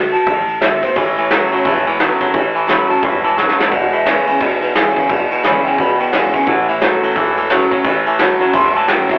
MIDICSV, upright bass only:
0, 0, Header, 1, 3, 480
1, 0, Start_track
1, 0, Key_signature, 3, "major"
1, 0, Tempo, 344432
1, 1346, Time_signature, 4, 2, 24, 8
1, 12795, End_track
2, 0, Start_track
2, 0, Title_t, "Upright bass"
2, 0, Program_c, 0, 32
2, 374, Note_on_c, 0, 33, 89
2, 921, Note_off_c, 0, 33, 0
2, 1337, Note_on_c, 0, 33, 96
2, 1883, Note_off_c, 0, 33, 0
2, 2304, Note_on_c, 0, 28, 86
2, 2847, Note_off_c, 0, 28, 0
2, 3261, Note_on_c, 0, 33, 97
2, 3805, Note_off_c, 0, 33, 0
2, 4218, Note_on_c, 0, 28, 88
2, 4763, Note_off_c, 0, 28, 0
2, 5177, Note_on_c, 0, 28, 97
2, 5723, Note_off_c, 0, 28, 0
2, 6137, Note_on_c, 0, 35, 83
2, 6682, Note_off_c, 0, 35, 0
2, 7100, Note_on_c, 0, 28, 96
2, 7308, Note_off_c, 0, 28, 0
2, 7574, Note_on_c, 0, 38, 92
2, 7830, Note_off_c, 0, 38, 0
2, 8063, Note_on_c, 0, 37, 84
2, 8315, Note_off_c, 0, 37, 0
2, 8537, Note_on_c, 0, 35, 91
2, 8792, Note_off_c, 0, 35, 0
2, 9015, Note_on_c, 0, 33, 98
2, 9562, Note_off_c, 0, 33, 0
2, 9973, Note_on_c, 0, 28, 85
2, 10521, Note_off_c, 0, 28, 0
2, 10932, Note_on_c, 0, 33, 97
2, 11481, Note_off_c, 0, 33, 0
2, 11893, Note_on_c, 0, 28, 82
2, 12443, Note_off_c, 0, 28, 0
2, 12795, End_track
3, 0, Start_track
3, 0, Title_t, "Muted upright bass strokes"
3, 203, Note_on_c, 9, 29, 73
3, 343, Note_off_c, 9, 29, 0
3, 2123, Note_on_c, 9, 29, 70
3, 2262, Note_off_c, 9, 29, 0
3, 3080, Note_on_c, 9, 29, 73
3, 3219, Note_off_c, 9, 29, 0
3, 4037, Note_on_c, 9, 29, 75
3, 4177, Note_off_c, 9, 29, 0
3, 5001, Note_on_c, 9, 29, 73
3, 5140, Note_off_c, 9, 29, 0
3, 5960, Note_on_c, 9, 29, 74
3, 6100, Note_off_c, 9, 29, 0
3, 7401, Note_on_c, 9, 29, 73
3, 7540, Note_off_c, 9, 29, 0
3, 7874, Note_on_c, 9, 29, 73
3, 8013, Note_off_c, 9, 29, 0
3, 8349, Note_on_c, 9, 29, 67
3, 8489, Note_off_c, 9, 29, 0
3, 8832, Note_on_c, 9, 29, 76
3, 8971, Note_off_c, 9, 29, 0
3, 9797, Note_on_c, 9, 29, 75
3, 9937, Note_off_c, 9, 29, 0
3, 10751, Note_on_c, 9, 29, 75
3, 10891, Note_off_c, 9, 29, 0
3, 11721, Note_on_c, 9, 29, 73
3, 11860, Note_off_c, 9, 29, 0
3, 12672, Note_on_c, 9, 29, 76
3, 12795, Note_off_c, 9, 29, 0
3, 12795, End_track
0, 0, End_of_file